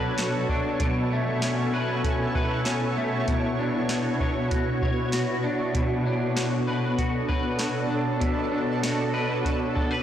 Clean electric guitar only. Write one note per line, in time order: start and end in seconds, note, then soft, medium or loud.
0.00 0.79 B2 medium
0.00 0.48 D4 soft
0.00 0.18 F#4 medium
0.00 1.15 B4 medium
0.19 0.87 F#4 medium
0.50 0.86 D4 medium
0.80 3.27 B2 medium
1.12 2.97 A3 medium
1.43 2.03 C#4 medium
1.74 2.34 B4 medium
2.04 2.65 C#4 medium
2.35 3.34 B4 medium
2.66 3.62 C#4 medium
2.97 3.59 A3 medium
3.28 5.73 B2 medium
3.59 5.43 D4 medium
3.90 4.51 F#4 medium
4.21 4.81 C#5 medium
4.51 5.13 F#4 medium
4.83 5.81 C#5 medium
5.13 6.36 F#4 medium
5.44 6.05 D4 medium
5.75 8.19 B2 medium
6.06 7.89 D4 medium
6.36 6.97 F#4 soft
6.67 7.28 B4 medium
6.98 7.58 F#4 medium
7.28 9.13 B4 medium
7.60 8.82 F#4 medium
7.90 8.51 D4 medium
8.20 10.03 B2 medium
8.52 10.03 D4 medium
8.83 9.43 F#4 medium
9.13 9.75 B4 medium
9.44 10.03 F#4 medium
9.75 9.91 A4 medium
9.91 10.03 B4 soft